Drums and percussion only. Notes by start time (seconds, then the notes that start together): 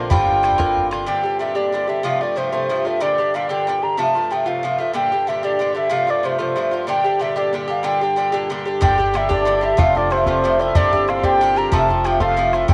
0.11 bodhran
0.28 bodhran
0.44 bodhran
0.52 bodhran
0.60 bodhran
0.77 bodhran
0.92 bodhran
8.82 bodhran
8.91 bodhran
9.00 bodhran
9.15 bodhran
9.31 bodhran
9.79 bodhran
9.96 bodhran
10.12 bodhran
10.26 bodhran
10.75 bodhran
10.93 bodhran
11.09 bodhran
11.24 bodhran
11.72 bodhran
11.90 bodhran
12.05 bodhran
12.20 bodhran
12.53 bodhran
12.69 bodhran